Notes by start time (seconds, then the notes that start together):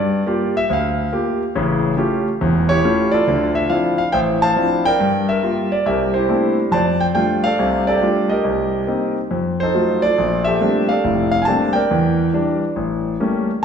Already playing: G2 D5
0.27 A#3 F4 G4
0.57 E5
0.70 D2 F5
1.13 A#3 F4 G4
1.55 A1 C#3
1.97 A3 C#4 F4 G4
2.41 E1 E2
2.69 E4 G4 C#5
2.84 A3 C#4 F4 G4
3.12 F4 A4 D5
3.27 D2 D3
3.55 E5
3.70 F3 C4 D4 E4 F5
3.98 F5
4.12 A1 C5 E5 G5
4.42 C5 F5 A5
4.56 F3 C4 D4 E4
4.85 A#4 D5 G5
5.00 G2
5.29 A#4 E5
5.43 G3 A#3 F4
5.72 D5
5.86 C2 G4 A#4 E5
6.14 E4 G4 C5
6.29 A3 A#3 C4 D4 E4
6.72 F2 C5 D5 A5
7.00 G5
7.15 G3 A3 D4 F4 G5
7.44 A4 D5 F5
7.59 C2 C3
7.87 G4 A4 D5
8.01 G3 A3 D4 F4
8.29 G4 A#4 D#5
8.44 C2
8.87 A#3 C4 D#4
9.31 F2
9.60 D#4 A4 C5
9.75 F#3 A3 D#4 F4
10.02 F4 A4 D5
10.18 A#1
10.44 G4 A4 E5
10.61 G3 A3 A#3 C4 D4
10.89 A4 D5 F5
11.04 F1 A2
11.31 F5
11.42 G#5 A5
11.47 G3 A3 A#3 C4 D4
11.73 A#4 D5 G5
11.91 E2 E3
12.33 E3 G3 D4
12.76 A1
13.20 G3 A3 A#3 C#4